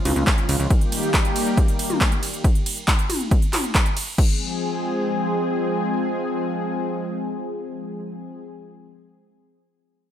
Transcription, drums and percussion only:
0.05 open hi-hat loud
0.05 mid tom medium
0.05 ride medium
0.16 closed hi-hat medium
0.27 kick loud
0.27 clap loud
0.27 closed hi-hat medium
0.38 closed hi-hat medium
0.49 open hi-hat loud
0.49 ride medium
0.60 closed hi-hat medium
0.70 kick loud
0.70 closed hi-hat medium
0.81 closed hi-hat medium
0.92 open hi-hat loud
0.92 ride medium
1.03 closed hi-hat medium
1.14 kick loud
1.14 clap loud
1.14 closed hi-hat medium
1.25 closed hi-hat medium
1.36 open hi-hat loud
1.36 ride medium
1.47 closed hi-hat medium
1.57 kick loud
1.57 closed hi-hat medium
1.68 closed hi-hat medium
1.79 open hi-hat loud
1.79 ride medium
1.90 closed hi-hat medium
1.90 mid tom medium
2.01 kick loud
2.01 clap loud
2.01 closed hi-hat medium
2.12 closed hi-hat medium
2.23 open hi-hat loud
2.23 ride medium
2.34 closed hi-hat medium
2.44 kick loud
2.44 closed hi-hat medium
2.55 closed hi-hat medium
2.66 open hi-hat loud
2.66 ride medium
2.77 closed hi-hat medium
2.88 kick loud
2.88 clap loud
2.88 closed hi-hat medium
2.99 closed hi-hat medium
3.10 open hi-hat loud
3.10 mid tom medium
3.10 ride medium
3.20 closed hi-hat medium
3.31 kick loud
3.31 closed hi-hat medium
3.42 closed hi-hat medium
3.53 clap medium
3.53 open hi-hat loud
3.53 mid tom medium
3.53 ride medium
3.64 closed hi-hat medium
3.75 kick loud
3.75 clap loud
3.75 closed hi-hat medium
3.86 closed hi-hat medium
3.97 open hi-hat loud
3.97 ride medium
4.07 open hi-hat medium
4.18 kick loud
4.18 crash medium

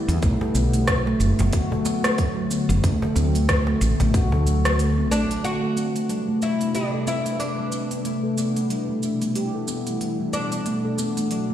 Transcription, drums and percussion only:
0.09 open hi-hat soft
0.09 shaker soft
0.22 kick loud
0.22 open hi-hat medium
0.22 shaker soft
0.41 cajon bass medium
0.55 cajon slap medium
0.55 open hi-hat soft
0.55 shaker medium
0.74 open hi-hat soft
0.74 shaker soft
0.88 kick loud
0.88 cross-stick medium
0.88 open hi-hat medium
0.88 shaker soft
1.07 cajon slap medium
1.20 shaker medium
1.39 cajon bass medium
1.39 open hi-hat soft
1.39 shaker soft
1.53 kick loud
1.53 open hi-hat medium
1.53 shaker soft
1.72 cajon bass medium
1.85 cajon slap medium
1.85 open hi-hat soft
1.85 shaker medium
2.04 cross-stick medium
2.04 open hi-hat soft
2.04 shaker soft
2.18 kick loud
2.18 open hi-hat soft
2.18 shaker soft
2.51 shaker medium
2.70 open hi-hat soft
2.70 shaker soft
2.84 kick loud
2.84 open hi-hat medium
2.84 shaker soft
3.02 cajon bass medium
3.02 cajon slap medium
3.16 cajon slap medium
3.16 open hi-hat soft
3.16 shaker medium
3.35 open hi-hat soft
3.35 shaker soft
3.49 kick loud
3.49 cross-stick medium
3.49 open hi-hat medium
3.49 shaker soft
3.67 cajon slap medium
3.81 open hi-hat soft
3.81 shaker medium
4.00 cajon bass medium
4.00 open hi-hat soft
4.00 shaker soft
4.14 kick loud
4.14 open hi-hat medium
4.14 shaker soft
4.32 cajon bass medium
4.47 open hi-hat soft
4.47 shaker medium
4.65 cross-stick medium
4.65 open hi-hat soft
4.65 shaker soft
4.79 open hi-hat medium
4.79 shaker soft
5.12 shaker medium
5.31 open hi-hat soft
5.31 shaker soft
5.45 open hi-hat soft
5.45 shaker soft
5.77 open hi-hat soft
5.77 shaker medium
5.96 open hi-hat soft
5.96 shaker soft
6.09 open hi-hat soft
6.09 shaker soft
6.42 shaker medium
6.61 open hi-hat soft
6.61 shaker soft
6.75 open hi-hat medium
6.75 shaker soft
7.07 open hi-hat soft
7.07 shaker medium
7.26 open hi-hat soft
7.26 shaker soft
7.40 open hi-hat soft
7.40 shaker soft
7.72 shaker medium
7.91 open hi-hat soft
7.91 shaker soft
8.05 open hi-hat soft
8.05 shaker soft
8.38 open hi-hat soft
8.38 shaker medium
8.56 open hi-hat soft
8.56 shaker soft
8.70 open hi-hat soft
8.70 shaker soft
9.03 shaker medium
9.22 open hi-hat soft
9.22 shaker soft
9.35 open hi-hat medium
9.35 shaker soft
9.68 open hi-hat soft
9.68 shaker medium
9.87 open hi-hat soft
9.87 shaker soft
10.01 open hi-hat soft
10.01 shaker soft
10.33 shaker medium
10.52 open hi-hat soft
10.52 shaker soft
10.66 open hi-hat soft
10.66 shaker soft
10.98 open hi-hat soft
10.98 shaker medium
11.17 open hi-hat soft
11.17 shaker soft
11.31 open hi-hat soft
11.31 shaker soft

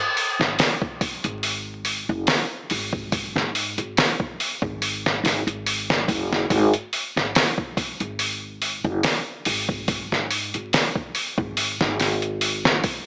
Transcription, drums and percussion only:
0.17 open hi-hat medium
0.41 snare medium
0.59 snare loud
0.59 open hi-hat medium
0.82 kick medium
1.01 kick medium
1.01 open hi-hat medium
1.24 closed hi-hat soft
1.43 open hi-hat medium
1.85 open hi-hat medium
2.27 snare loud
2.27 open hi-hat medium
2.70 open hi-hat medium
2.93 kick medium
3.12 kick loud
3.12 open hi-hat medium
3.36 snare soft
3.55 open hi-hat medium
3.78 closed hi-hat soft
3.97 snare loud
3.97 open hi-hat medium
4.20 kick medium
4.40 open hi-hat medium
4.62 kick medium
4.82 open hi-hat medium
5.06 snare medium
5.25 snare soft
5.25 open hi-hat medium
5.48 closed hi-hat soft
5.66 open hi-hat medium
5.90 snare loud
6.08 kick medium
6.08 open hi-hat medium
6.33 snare soft
6.50 kick loud
6.50 open hi-hat medium
6.73 closed hi-hat soft
6.93 open hi-hat medium
7.17 snare soft
7.35 snare loud
7.35 open hi-hat medium
7.58 kick medium
7.77 kick medium
7.77 open hi-hat medium
8.00 closed hi-hat soft
8.19 open hi-hat medium
8.62 open hi-hat medium
9.03 snare loud
9.03 open hi-hat medium
9.45 open hi-hat medium
9.69 kick medium
9.88 kick loud
9.88 open hi-hat medium
10.12 snare soft
10.31 open hi-hat medium
10.54 closed hi-hat soft
10.73 snare loud
10.73 open hi-hat medium
10.95 kick medium
11.15 open hi-hat medium
11.38 kick loud
11.57 open hi-hat medium
11.81 snare medium
12.00 snare soft
12.00 open hi-hat medium
12.22 closed hi-hat soft
12.41 open hi-hat loud
12.65 snare loud
12.84 kick loud
12.84 open hi-hat medium

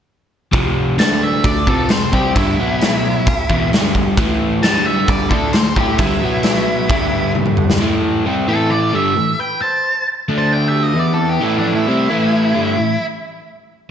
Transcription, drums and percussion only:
0.53 kick medium
0.53 open hi-hat soft
0.99 snare medium
0.99 open hi-hat soft
1.44 kick medium
1.44 open hi-hat soft
1.67 kick medium
1.89 snare medium
1.89 open hi-hat soft
2.13 kick medium
2.36 kick medium
2.36 open hi-hat soft
2.81 snare loud
2.81 open hi-hat soft
3.27 kick loud
3.27 open hi-hat soft
3.50 kick medium
3.73 snare medium
3.73 open hi-hat soft
3.95 kick medium
4.17 kick medium
4.17 open hi-hat soft
4.63 snare loud
4.63 open hi-hat soft
5.08 kick loud
5.08 open hi-hat soft
5.31 kick medium
5.53 snare medium
5.53 open hi-hat soft
5.76 kick medium
5.98 kick medium
5.98 open hi-hat soft
6.43 snare medium
6.43 open hi-hat soft
6.89 kick loud
6.89 open hi-hat soft
7.35 high tom soft
7.46 mid tom soft
7.57 mid tom medium
7.70 snare medium

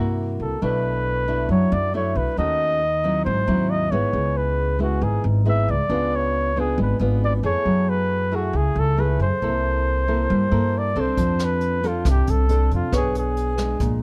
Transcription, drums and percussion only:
11.17 kick medium
11.17 closed hi-hat medium
11.39 cross-stick medium
11.39 closed hi-hat soft
11.61 closed hi-hat soft
11.83 closed hi-hat soft
12.05 kick medium
12.05 cross-stick soft
12.05 closed hi-hat medium
12.27 closed hi-hat soft
12.49 closed hi-hat soft
12.71 closed hi-hat soft
12.93 kick soft
12.93 cross-stick medium
12.93 closed hi-hat soft
13.15 closed hi-hat soft
13.37 closed hi-hat soft
13.58 cross-stick soft
13.58 closed hi-hat soft
13.80 kick medium
13.80 closed hi-hat medium

